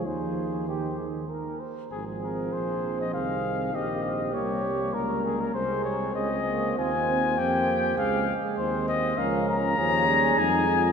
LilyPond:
<<
  \new Staff \with { instrumentName = "Trumpet" } { \time 3/4 \key aes \major \tempo 4 = 99 c''4 c''8 r8 bes'8 r8 | aes'8 bes'8 c''8. ees''16 f''4 | ees''4 des''4 bes'8 aes'16 bes'16 | c''8 des''8 ees''4 aes''4 |
g''4 f''8. r16 c''8 ees''8 | f''8 bes''4. aes''4 | }
  \new Staff \with { instrumentName = "Flugelhorn" } { \time 3/4 \key aes \major aes'4 g'8 aes'8 bes'8 c''8 | aes'2. | g'8 g'4. bes'4 | aes'4 aes'4 f'4 |
g'4 aes'8 aes'4 r8 | bes'4 aes'2 | }
  \new Staff \with { instrumentName = "French horn" } { \time 3/4 \key aes \major ees'4 ees'8 r8 ees'8 r8 | c'2. | c'4 bes8 bes4. | c'2. |
c'4. r8 c'4 | des'4 des'4 ees'8 f'8 | }
  \new Staff \with { instrumentName = "Trombone" } { \clef bass \time 3/4 \key aes \major f4 ees4 r4 | f2 ees4~ | ees4 g2 | aes4 aes8 bes8 c'8 c'8 |
bes4 aes4. r8 | f4 f8 g8 aes4 | }
  \new Staff \with { instrumentName = "Tuba" } { \clef bass \time 3/4 \key aes \major ees,2~ ees,8 r8 | aes,,4 bes,,4 c,4 | bes,,4 c,4 des,4 | c,4 des,4 ees,4 |
f,4 des,8 r8 ees,4 | des,4 ees,4 f,4 | }
>>